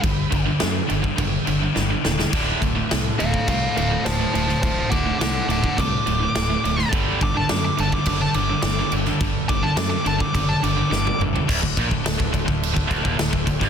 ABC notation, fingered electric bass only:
X:1
M:4/4
L:1/16
Q:1/4=105
K:none
V:1 name="Fingered electric bass" clef=bass
G,,,2 G,,,2 ^F,,2 G,,,2 ^F,,,2 G,,,2 G,,,2 _E,,,2 | D,,,2 D,,,2 C,,2 D,,,2 C,,2 D,,,2 D,,,2 D,,,2 | D,,,2 D,,,2 C,,2 D,,,2 C,,2 D,,,2 D,,,2 D,,,2 | G,,,2 G,,,2 ^F,,2 G,,,2 ^F,,,2 G,,,2 G,,,2 G,,,2 |
G,,,2 G,,,2 ^F,,2 G,,,2 ^F,,,2 G,,,2 G,,,2 G,,,2 | D,,, D,,, _B,,, D,,, D,,, D,,, D,,, D,,,2 D,,, D,,, _E,,, D,,, D,,, D,,, G,,, |]